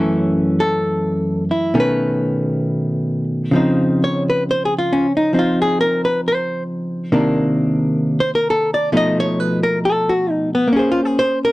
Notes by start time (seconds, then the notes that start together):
Already playing: F#2 E3 A3 C#4 F#4
0.60 A4
1.51 E4
1.74 B2 D#3 A3 C#4
1.80 B4
3.51 C#3 F3 C4
3.56 D#4
4.04 C#5
4.30 B4
4.51 C5
4.65 G#4
4.79 F4
4.93 C#4
5.17 D#4
5.33 F3 C4 D#4
5.39 F4
5.62 G#4
5.81 A#4
6.05 B4
6.28 C5
7.12 C3 D#3 A#3 D4
8.20 C5
8.35 A#4
8.50 A4
8.74 D5
8.92 B2 F3 A3 D#4
8.97 D#5
9.20 C#5
9.40 B4
9.63 A#4
9.85 A4
10.09 F#4
10.30 D#4
10.55 B3
10.68 A#3
10.73 C#4 G#4
10.79 C5
10.92 F4
11.05 G#4
11.19 C5
11.45 A#4